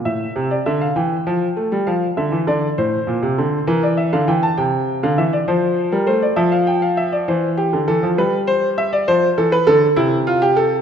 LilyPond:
<<
  \new Staff \with { instrumentName = "Grand piano" } { \time 12/8 \key f \major \tempo 4. = 67 e''8. d''16 e''16 f''16 g''4. f''8 e''8 d''8 c''4. | bes'16 d''16 e''16 f''16 g''16 a''16 g''8. f''16 e''16 d''16 c''8. bes'16 c''16 d''16 e''16 f''16 g''16 f''16 e''16 d''16 | c''8 g'8 a'8 b'8 c''8 e''16 d''16 c''8 a'16 b'16 a'8 e'8 f'16 g'16 a'8 | }
  \new Staff \with { instrumentName = "Grand piano" } { \clef bass \time 12/8 \key f \major a,8 c8 d8 e8 f8 a16 g16 f8 d16 e16 d8 a,8 bes,16 c16 d8 | e8. d16 e8 c8. d16 e8 f8. g16 a8 f4. | e8. d16 e16 f16 g4. f8 e8 d8 c4. | }
>>